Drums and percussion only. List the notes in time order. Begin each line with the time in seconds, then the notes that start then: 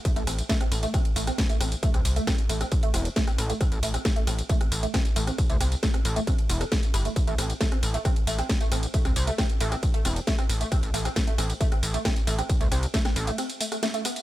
0.05 kick, closed hi-hat, ride, tambourine
0.16 closed hi-hat, ride, tambourine
0.27 cross-stick, open hi-hat, ride, tambourine
0.39 closed hi-hat, ride, tambourine
0.49 kick, snare, closed hi-hat, ride, tambourine
0.61 cross-stick, closed hi-hat, ride
0.72 open hi-hat, ride, tambourine
0.83 closed hi-hat, ride, tambourine
0.94 kick, cross-stick, closed hi-hat, ride, tambourine
1.05 closed hi-hat, ride
1.16 open hi-hat, ride, tambourine
1.27 cross-stick, closed hi-hat, ride, tambourine
1.38 kick, snare, closed hi-hat, ride, tambourine
1.50 closed hi-hat, ride, tambourine
1.61 cross-stick, open hi-hat, ride, tambourine
1.72 closed hi-hat, ride, tambourine
1.83 kick, closed hi-hat, ride, tambourine
1.94 cross-stick, closed hi-hat, ride, tambourine
2.05 open hi-hat, ride, tambourine
2.16 closed hi-hat, ride, tambourine
2.27 kick, cross-stick, snare, closed hi-hat, ride, tambourine
2.38 closed hi-hat, ride
2.49 open hi-hat, ride, tambourine
2.61 cross-stick, closed hi-hat, ride, tambourine
2.72 kick, closed hi-hat, ride, tambourine
2.83 closed hi-hat, ride
2.94 cross-stick, open hi-hat, ride, tambourine
3.05 closed hi-hat, ride, tambourine
3.16 kick, snare, closed hi-hat, ride, tambourine
3.27 cross-stick, closed hi-hat, ride, tambourine
3.38 open hi-hat, ride, tambourine
3.50 closed hi-hat, ride, tambourine
3.61 kick, cross-stick, closed hi-hat, ride, tambourine
3.72 closed hi-hat, ride, tambourine
3.83 open hi-hat, ride, tambourine
3.94 cross-stick, closed hi-hat, ride, tambourine
4.05 kick, snare, closed hi-hat, ride, tambourine
4.16 closed hi-hat, ride
4.27 cross-stick, open hi-hat, ride, tambourine
4.39 closed hi-hat, ride, tambourine
4.49 kick, closed hi-hat, ride, tambourine
4.61 cross-stick, closed hi-hat, ride
4.72 open hi-hat, ride, tambourine
4.83 closed hi-hat, ride, tambourine
4.94 kick, cross-stick, snare, closed hi-hat, ride, tambourine
5.05 closed hi-hat, ride, tambourine
5.16 open hi-hat, ride, tambourine
5.27 cross-stick, closed hi-hat, ride, tambourine
5.38 kick, closed hi-hat, ride, tambourine
5.50 closed hi-hat, ride, tambourine
5.61 cross-stick, open hi-hat, ride, tambourine
5.72 closed hi-hat, ride, tambourine
5.83 kick, snare, closed hi-hat, ride, tambourine
5.94 cross-stick, closed hi-hat, ride
6.05 open hi-hat, ride, tambourine
6.16 closed hi-hat, ride, tambourine
6.27 kick, cross-stick, closed hi-hat, ride, tambourine
6.39 closed hi-hat, ride
6.50 open hi-hat, ride, tambourine
6.61 cross-stick, closed hi-hat, ride, tambourine
6.72 kick, snare, closed hi-hat, ride, tambourine
6.83 closed hi-hat, ride, tambourine
6.94 cross-stick, open hi-hat, ride, tambourine
7.05 closed hi-hat, ride, tambourine
7.16 kick, closed hi-hat, ride, tambourine
7.27 closed hi-hat, ride, tambourine
7.38 cross-stick, open hi-hat, ride, tambourine
7.50 closed hi-hat, ride, tambourine
7.61 kick, snare, closed hi-hat, ride, tambourine
7.72 cross-stick, closed hi-hat, ride
7.83 open hi-hat, ride, tambourine
7.94 closed hi-hat, ride, tambourine
8.05 kick, cross-stick, closed hi-hat, ride, tambourine
8.16 closed hi-hat, ride
8.27 open hi-hat, ride, tambourine
8.39 cross-stick, closed hi-hat, ride, tambourine
8.49 kick, snare, closed hi-hat, ride, tambourine
8.61 closed hi-hat, ride, tambourine
8.72 cross-stick, open hi-hat, ride, tambourine
8.83 closed hi-hat, ride, tambourine
8.94 kick, closed hi-hat, ride, tambourine
9.05 cross-stick, closed hi-hat, ride, tambourine
9.16 open hi-hat, ride, tambourine
9.27 closed hi-hat, ride, tambourine
9.38 kick, cross-stick, snare, closed hi-hat, ride, tambourine
9.50 closed hi-hat, ride
9.61 open hi-hat, ride, tambourine
9.72 cross-stick, closed hi-hat, ride, tambourine
9.83 kick, closed hi-hat, ride, tambourine
9.94 closed hi-hat, ride
10.05 cross-stick, open hi-hat, ride, tambourine
10.16 closed hi-hat, ride, tambourine
10.27 kick, snare, closed hi-hat, ride, tambourine
10.39 cross-stick, closed hi-hat, ride, tambourine
10.50 open hi-hat, ride, tambourine
10.61 closed hi-hat, ride, tambourine
10.72 kick, cross-stick, closed hi-hat, ride, tambourine
10.83 closed hi-hat, ride, tambourine
10.94 open hi-hat, ride, tambourine
11.05 cross-stick, closed hi-hat, ride, tambourine
11.16 kick, snare, closed hi-hat, ride, tambourine
11.27 closed hi-hat, ride
11.38 cross-stick, open hi-hat, ride, tambourine
11.50 closed hi-hat, ride, tambourine
11.61 kick, closed hi-hat, ride, tambourine
11.72 cross-stick, closed hi-hat, ride
11.83 open hi-hat, ride, tambourine
11.94 closed hi-hat, ride, tambourine
12.05 kick, cross-stick, snare, closed hi-hat, ride, tambourine
12.16 closed hi-hat, ride, tambourine
12.27 open hi-hat, ride, tambourine
12.39 cross-stick, closed hi-hat, ride, tambourine
12.49 kick, closed hi-hat, ride, tambourine
12.61 closed hi-hat, ride, tambourine
12.72 cross-stick, open hi-hat, ride, tambourine
12.83 closed hi-hat, ride, tambourine
12.94 kick, snare, closed hi-hat, ride, tambourine
13.05 cross-stick, snare, closed hi-hat, ride, tambourine
13.16 open hi-hat, ride, tambourine
13.27 closed hi-hat, ride, tambourine
13.38 cross-stick, closed hi-hat, ride, tambourine
13.50 closed hi-hat, ride, tambourine
13.61 open hi-hat, ride, tambourine
13.72 cross-stick, closed hi-hat, ride, tambourine
13.83 snare, closed hi-hat, ride, tambourine
13.94 closed hi-hat, ride, tambourine
14.05 cross-stick, open hi-hat, ride, tambourine
14.16 closed hi-hat, ride, tambourine